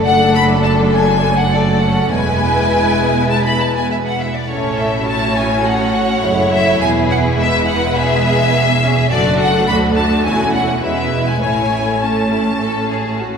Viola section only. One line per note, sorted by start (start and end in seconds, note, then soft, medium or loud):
0.00 1.48 A3 medium
0.00 1.48 D4 medium
1.52 2.10 A3 soft
1.52 1.61 D4 soft
1.81 2.10 C#4 soft
2.11 4.28 G#3 soft
2.11 4.29 B3 soft
4.49 5.03 A3 soft
4.49 5.03 C#4 soft
5.06 6.23 F#3 soft
5.06 6.21 C#4 soft
6.23 6.52 G#3 soft
6.23 6.51 A3 soft
6.53 6.81 A3 medium
6.81 7.39 B3 medium
7.38 7.95 G#3 medium
7.96 8.52 G#3 medium
7.96 8.53 B3 medium
8.54 8.62 B3 medium
8.83 8.91 C#4 medium
9.11 10.83 A3 medium
9.11 10.23 D4 medium
10.26 10.81 E4 medium
10.82 11.41 G#3 soft
10.82 11.40 E4 soft
11.40 13.38 A3 soft
11.40 13.38 C#4 soft